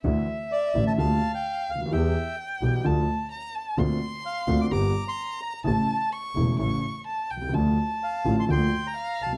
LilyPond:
<<
  \new Staff \with { instrumentName = "Bandoneon" } { \time 4/4 \key d \minor \tempo 4 = 128 r4 d''8. a''16 a''8. g''8. f''8 | e''4 r2. | r4 f''8. d'''16 d'''8. c'''8. bes''8 | a''4 r2. |
r4 f''8. c'''16 c'''8. bes''8. a''8 | }
  \new Staff \with { instrumentName = "Violin" } { \time 4/4 \key d \minor e''2 f''2 | g''2 a''4 bes''8 a''8 | c'''2 bes''2 | a''4 cis'''4 cis'''4 a''8 g''8 |
a''2 g''4 f''4 | }
  \new Staff \with { instrumentName = "Grand piano" } { \clef bass \time 4/4 \key d \minor <d, d e a e'>8 r4 <a,, a, d e a e'>8 <d, d g bes f'>8 r4 r32 cis,32 d,32 ees,32 | <e, e g b g'>8 r4 <b,, b, e g b g'>8 <d, d f a f'>8 r4. | <d, d bes c' f'>8 r4 <d, d bes c' f'>8 <g,, g, d g bes g'>8 r4. | <a,, a, cis e a e'>8 r4 <e,, e, cis e a e'>8 <a,, a, cis e a e'>8 r4 r32 b,,32 c,32 cis,32 |
<d, d f a f'>8 r4 <a,, a, d f a f'>8 <d, d f bes f'>8 r4 r32 b,,32 c,32 r32 | }
  \new Staff \with { instrumentName = "Double bass" } { \clef bass \time 4/4 \key d \minor d,8 r4 a,,8 d,8 r4 d,8 | e,8 r4 b,,8 d,8 r4. | d,8 r4 d,8 g,,8 r4. | a,,8 r4 e,,8 a,,8 r4 c,8 |
d,8 r4 a,,8 d,8 r4 c,8 | }
>>